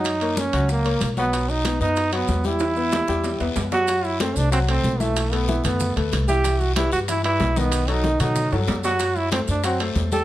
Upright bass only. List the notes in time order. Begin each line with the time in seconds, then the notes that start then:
Already playing: F#2
0.53 C#2
1.01 B1
1.80 F#2
2.28 E2
3.08 E2
3.40 E2
3.56 F#2
4.36 C2
4.84 B1
5.65 F#2
5.96 D2
6.12 C2
6.92 G2
7.40 B1
8.20 B2
8.52 G2
8.68 F#2
9.48 F#2
9.95 E2